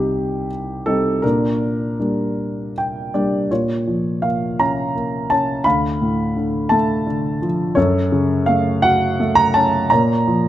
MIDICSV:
0, 0, Header, 1, 2, 480
1, 0, Start_track
1, 0, Key_signature, -2, "major"
1, 0, Tempo, 748130
1, 798, Time_signature, 6, 3, 24, 8
1, 2248, Key_signature, -5, "minor"
1, 2249, Tempo, 713436
1, 6944, End_track
2, 0, Start_track
2, 0, Title_t, "Grand piano"
2, 0, Program_c, 0, 0
2, 0, Control_c, 0, 64, 127
2, 0, Note_on_c, 0, 36, 49
2, 0, Note_on_c, 0, 55, 34
2, 0, Note_on_c, 0, 60, 31
2, 0, Note_on_c, 0, 63, 38
2, 0, Note_on_c, 0, 67, 64
2, 296, Note_off_c, 0, 67, 0
2, 309, Note_off_c, 0, 55, 0
2, 312, Note_off_c, 0, 60, 0
2, 312, Note_off_c, 0, 63, 0
2, 551, Note_on_c, 0, 69, 75
2, 553, Note_on_c, 0, 55, 39
2, 556, Note_on_c, 0, 60, 39
2, 560, Note_on_c, 0, 63, 49
2, 772, Note_off_c, 0, 36, 0
2, 784, Note_on_c, 0, 70, 73
2, 787, Note_off_c, 0, 55, 0
2, 788, Note_off_c, 0, 60, 0
2, 790, Note_off_c, 0, 63, 0
2, 794, Note_on_c, 0, 46, 57
2, 796, Note_on_c, 0, 62, 55
2, 800, Note_off_c, 0, 69, 0
2, 805, Control_c, 0, 64, 0
2, 917, Control_c, 0, 64, 127
2, 1273, Note_off_c, 0, 62, 0
2, 1279, Note_on_c, 0, 55, 36
2, 1281, Note_on_c, 0, 58, 38
2, 1282, Note_on_c, 0, 62, 43
2, 1741, Note_off_c, 0, 70, 0
2, 1758, Note_off_c, 0, 55, 0
2, 1759, Note_off_c, 0, 58, 0
2, 1760, Note_off_c, 0, 62, 0
2, 1782, Note_on_c, 0, 79, 59
2, 2001, Note_off_c, 0, 79, 0
2, 2015, Note_on_c, 0, 55, 43
2, 2016, Note_on_c, 0, 58, 41
2, 2016, Note_on_c, 0, 74, 58
2, 2020, Note_on_c, 0, 62, 51
2, 2220, Note_off_c, 0, 46, 0
2, 2233, Note_off_c, 0, 74, 0
2, 2241, Note_off_c, 0, 55, 0
2, 2242, Note_off_c, 0, 58, 0
2, 2244, Note_off_c, 0, 62, 0
2, 2251, Note_on_c, 0, 46, 46
2, 2253, Note_on_c, 0, 73, 59
2, 2254, Note_on_c, 0, 65, 46
2, 2255, Control_c, 0, 64, 0
2, 2356, Control_c, 0, 64, 127
2, 2497, Note_on_c, 0, 53, 41
2, 2731, Note_on_c, 0, 77, 66
2, 2739, Note_on_c, 0, 58, 37
2, 2751, Note_off_c, 0, 73, 0
2, 2953, Note_off_c, 0, 65, 0
2, 2982, Note_on_c, 0, 61, 47
2, 2982, Note_on_c, 0, 82, 76
2, 2983, Note_off_c, 0, 77, 0
2, 3213, Note_off_c, 0, 58, 0
2, 3223, Note_on_c, 0, 58, 38
2, 3434, Note_off_c, 0, 53, 0
2, 3455, Note_off_c, 0, 61, 0
2, 3456, Note_on_c, 0, 81, 77
2, 3465, Note_on_c, 0, 61, 50
2, 3475, Note_off_c, 0, 82, 0
2, 3670, Note_off_c, 0, 46, 0
2, 3683, Note_off_c, 0, 58, 0
2, 3687, Note_on_c, 0, 83, 86
2, 3691, Note_off_c, 0, 61, 0
2, 3697, Note_on_c, 0, 38, 53
2, 3697, Note_on_c, 0, 77, 58
2, 3701, Note_off_c, 0, 81, 0
2, 3703, Control_c, 0, 64, 0
2, 3817, Control_c, 0, 64, 127
2, 3936, Note_on_c, 0, 45, 48
2, 4174, Note_on_c, 0, 50, 43
2, 4378, Note_off_c, 0, 77, 0
2, 4394, Note_on_c, 0, 81, 82
2, 4408, Note_on_c, 0, 57, 56
2, 4421, Note_off_c, 0, 83, 0
2, 4635, Note_off_c, 0, 50, 0
2, 4645, Note_on_c, 0, 50, 51
2, 4855, Note_off_c, 0, 45, 0
2, 4883, Note_on_c, 0, 53, 52
2, 4906, Note_off_c, 0, 81, 0
2, 5091, Note_off_c, 0, 38, 0
2, 5098, Note_off_c, 0, 57, 0
2, 5105, Note_off_c, 0, 50, 0
2, 5105, Note_on_c, 0, 73, 80
2, 5112, Note_off_c, 0, 53, 0
2, 5116, Note_on_c, 0, 42, 66
2, 5119, Note_on_c, 0, 69, 59
2, 5126, Control_c, 0, 64, 0
2, 5248, Control_c, 0, 64, 127
2, 5355, Note_on_c, 0, 49, 51
2, 5563, Note_off_c, 0, 73, 0
2, 5584, Note_on_c, 0, 77, 79
2, 5599, Note_on_c, 0, 57, 50
2, 5810, Note_off_c, 0, 69, 0
2, 5827, Note_on_c, 0, 78, 92
2, 5838, Note_off_c, 0, 77, 0
2, 5839, Note_on_c, 0, 66, 53
2, 6070, Note_off_c, 0, 57, 0
2, 6080, Note_on_c, 0, 57, 57
2, 6167, Note_off_c, 0, 78, 0
2, 6184, Note_on_c, 0, 82, 99
2, 6291, Note_off_c, 0, 49, 0
2, 6309, Note_on_c, 0, 81, 89
2, 6315, Note_off_c, 0, 82, 0
2, 6322, Note_on_c, 0, 61, 58
2, 6532, Note_off_c, 0, 42, 0
2, 6540, Note_off_c, 0, 66, 0
2, 6547, Note_off_c, 0, 57, 0
2, 6551, Note_on_c, 0, 82, 80
2, 6554, Note_off_c, 0, 61, 0
2, 6559, Note_on_c, 0, 73, 57
2, 6562, Note_off_c, 0, 81, 0
2, 6563, Note_on_c, 0, 46, 72
2, 6567, Control_c, 0, 64, 0
2, 6687, Control_c, 0, 64, 127
2, 6803, Note_on_c, 0, 53, 52
2, 6944, Note_off_c, 0, 46, 0
2, 6944, Note_off_c, 0, 53, 0
2, 6944, Note_off_c, 0, 73, 0
2, 6944, Note_off_c, 0, 82, 0
2, 6944, End_track
0, 0, End_of_file